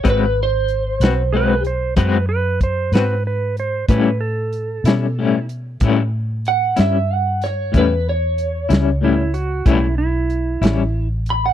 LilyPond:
<<
  \new Staff \with { instrumentName = "Clean electric guitar" } { \time 12/8 \key a \lydian \tempo 4. = 62 b'8 bis'2 r2. r8 | r1 fis''8 e''8 fis''8 cis''8 | b'8 cis''2 r2. b''16 fis''16 | }
  \new Staff \with { instrumentName = "Electric slide guitar" } { \time 12/8 \key a \lydian r2 b'8 bis'8 b'8 b'8 bis'8 b'8 b'8 bis'8 | b'8 a'2 r2. r8 | r2 e'8 fis'8 e'8 e'4.~ e'16 r8. | }
  \new Staff \with { instrumentName = "Clean electric guitar" } { \time 12/8 \key a \lydian <gis bis fis' b'>8 r4 <bis fis' b'>8 <gis bis fis' b'>8 r8 <gis bis fis' b'>8 r4 <bis fis' b'>8 r4 | <a, g cis' e'>8 r4 <g cis' e'>8 <a, g cis' e'>8 r8 <a, g cis' e'>8 r4 <g cis' e'>8 r4 | <a, g cis' e'>8 r4 <g cis' e'>8 <a, g cis' e'>8 r8 <a, g cis' e'>8 r4 <g cis' e'>8 r4 | }
  \new Staff \with { instrumentName = "Fingered electric bass" } { \clef bass \time 12/8 \key a \lydian gis,,4. b,,4. fis,4. gis,4. | a,4. b,4. a,4. g,4. | e,4. cis,4. b,,4. a,,4. | }
  \new DrumStaff \with { instrumentName = "Drums" } \drummode { \time 12/8 <hh bd>4 hh8 <hh sn>4 hh8 <hh bd>4 <hh bd>8 <hh sn>4 hh8 | <hh bd>4 hh8 <hh sn>4 hh8 <hh bd>4 hh8 <hh sn>4 <hh sn>8 | <hh bd>4 hh8 <hh sn>4 hh8 <hh bd>4 hh8 <hh sn>4 hh8 | }
>>